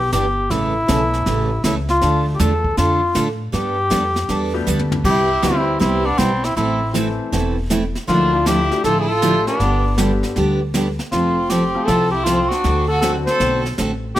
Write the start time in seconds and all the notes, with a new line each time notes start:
Already playing: B1
0.12 G1 E3 B3 D4 G4, snare, hi-hat pedal
0.50 A1 C#3 E3 A3 C#4 E4 A4, brush sweep, snare
0.87 B1 C#3 E3 A3 C#4 E4 A4, snare, hi-hat pedal
1.13 snare
1.26 A1 C#3 E3 A3 C#4 A4, brush sweep, snare
1.64 C#2 C#3 E3 A3 C#4 E4 A4, snare, hi-hat pedal
1.89 F4, snare
2.01 D2 D3 F3 A3 D4 F4 A4, brush sweep, snare
2.35 G4
2.39 E2 D3 A3 D4 F4 A4, snare, hi-hat pedal
2.64 kick
2.77 F2 D3 A3 D4 F4 A4, brush sweep, snare
3.15 A2 D3 A3 D4 F4 A4, snare, hi-hat pedal
3.52 G2 G3 B3 D4 G4 A4, brush sweep, snare
3.90 F2 G3 B3 D4 A4, snare, hi-hat pedal
4.16 snare
4.29 E2 G3 B3 D4 A4, brush sweep, snare
4.54 G3 A3 B3 D4 G4
4.67 D2 G3 B3 D4 A4, hi-hat pedal
4.79 floor tom
4.92 floor tom
5.04 C2 C3 G3 B3 E4 G4, brush sweep, kick, snare, crash
5.42 D2 C3 G3 B3 C4 E4 G4 B4, snare, hi-hat pedal
5.80 C2 C3 G3 B3 C4 E4 G4, brush sweep, snare
6.05 B3 D4
6.18 B1 C3 G3 B3 C4 E4 G4, snare, hi-hat pedal
6.44 C4 E4, snare
6.56 A1 E3 A3 C4 E4 A4, brush sweep, snare
6.94 E3 A3 C4 E4 A4, snare, hi-hat pedal
7.32 E1 E3 A3 C4 E4 A4, brush sweep, snare
7.70 E3 A3 C4 E4 A4, snare, hi-hat pedal
7.95 snare
8.07 D2 D3 F3 F#3 A3 A#3 D4 D#4 E4 F4 F#4, brush sweep, snare
8.33 F3 A3 D4 E4 F4
8.46 D3 F3 A3 E4 G4, snare, hi-hat pedal
8.71 F3 A3 D4 E4 G4, snare
8.84 A1 D3 F3 A3 E4 F4 A4, brush sweep, snare
9.00 E4 G#4
9.09 F4 A4
9.22 D3 F3 A3 D4 E4 G4, snare, hi-hat pedal
9.47 B3 D4, snare
9.60 G1 D3 G3 B3 D4 G4, brush sweep, snare
9.97 D3 G3 B3 D4 G4, snare, hi-hat pedal
10.23 snare
10.36 D2 D3 G3 B3 D4 G4, brush sweep, snare
10.74 D3 G3 B3 D4 G4, snare, hi-hat pedal
10.99 snare
11.12 F1 F3 C4 F4 A4, brush sweep, snare
11.49 F3 C4 F4 G4 A4, snare, hi-hat pedal
11.75 F3 A3 C4 F4 A4
11.84 C2 E4 F4 G#4 A4, brush sweep, snare
11.88 F3 C4 F4 A4
12.12 E4 G4
12.23 F3 C4 F4 A4, snare, hi-hat pedal
12.49 D4 F#4, snare
12.64 D2 D3 A3 C4 F#4 A4, brush sweep, snare
12.88 F#4 A4
13.01 D3 F#3 A3 C4 D4 F#4 A4, snare, hi-hat pedal
13.26 A4 C5, snare
13.40 B1 D3 A3 C4 F#4 A4, brush sweep, snare
13.65 snare
13.78 A1 D3 A3 C4 F#4 A4, snare, hi-hat pedal
14.15 D3 D4 G4, brush sweep, snare